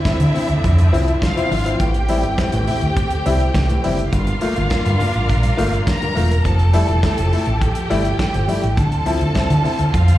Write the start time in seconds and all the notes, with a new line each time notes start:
Already playing: D3 F3 C4 D4 E4 E5
0.05 C4 E4, muted fingered electric bass stroke, kick, snare, closed hi-hat, high conga
0.20 D3, closed hi-hat
0.34 C4 E4, open hi-hat, low conga
0.49 D2, closed hi-hat
0.64 F2, kick, closed hi-hat, muted conga
0.78 closed hi-hat
0.92 C2 F3 C4 E4, open hi-hat, muted conga
1.08 closed hi-hat
1.22 F4 F5, kick, snare, closed hi-hat, high conga
1.36 F3 C4 E4, closed hi-hat
1.51 G#1 D3, open hi-hat, high conga
1.65 F3 C4 E4, closed hi-hat
1.79 A1 A2 E3 A3 C4 G4 G5, kick, closed hi-hat
1.94 closed hi-hat
2.08 G3 C4 E4, open hi-hat, muted conga
2.23 G1 C4 E4, closed hi-hat
2.38 C4 E4, kick, snare, closed hi-hat, high conga
2.52 A1 A2 E3, closed hi-hat
2.67 C4 E4, open hi-hat, low conga
2.81 D2, closed hi-hat
2.97 kick, closed hi-hat, muted conga
3.10 closed hi-hat
3.26 C2 G3 C4 E4, open hi-hat, muted conga
3.40 closed hi-hat
3.54 C2 C4 E4, kick, snare, closed hi-hat, high conga
3.68 A2 E3, closed hi-hat
3.84 F#1 G3 C4 E4, open hi-hat, high conga
3.99 closed hi-hat
4.12 G1 G2 D3 G3 D4 F4 A#4 F5, kick, closed hi-hat
4.27 closed hi-hat
4.41 A3 A#3 F4, open hi-hat, muted conga
4.56 G1 A#3 F4, closed hi-hat
4.70 A#3 F4, muted fingered electric bass stroke, kick, snare, closed hi-hat, high conga
4.84 G2 D3, closed hi-hat
4.99 A#3 F4, open hi-hat, low conga
5.14 A1, closed hi-hat
5.29 A#1, kick, closed hi-hat, muted conga
5.43 closed hi-hat
5.57 G1 A3 A#3 F4, open hi-hat, muted conga
5.73 closed hi-hat
5.86 A#3 F4 A#4 A#5, kick, snare, closed hi-hat, high conga
6.00 G2 D3, closed hi-hat
6.15 E1 A3 A#3 F4, open hi-hat, high conga
6.31 closed hi-hat
6.44 F1 F3 G4 A4 A5, kick, closed hi-hat, muted conga
6.59 closed hi-hat
6.73 G3 A3 E4, open hi-hat, muted conga
6.88 E1 A3 E4, closed hi-hat
7.03 A3 E4, kick, snare, closed hi-hat, high conga
7.18 F1 F3, closed hi-hat
7.32 A3 E4, open hi-hat, low conga
7.46 A1, closed hi-hat
7.61 G4 G5, kick, closed hi-hat, muted conga
7.75 closed hi-hat
7.90 G1 G3 A3 E4, open hi-hat, muted conga
8.05 closed hi-hat
8.19 A3 E4, kick, snare, closed hi-hat, high conga
8.34 G1 F3, closed hi-hat
8.48 G3 A3 E4, open hi-hat, high conga
8.63 A1, closed hi-hat
8.77 D2 D3 C4 F4 A4 A5, kick, closed hi-hat
8.92 closed hi-hat
9.06 F3 C4 E4, open hi-hat, muted conga
9.21 D2 C4 E4, closed hi-hat
9.34 C4 E4, muted fingered electric bass stroke, kick, snare, closed hi-hat, high conga
9.49 D3, closed hi-hat
9.64 C4 E4, open hi-hat, low conga
9.79 D2, closed hi-hat
9.93 F2 F4 F5, kick, closed hi-hat, muted conga
10.08 closed hi-hat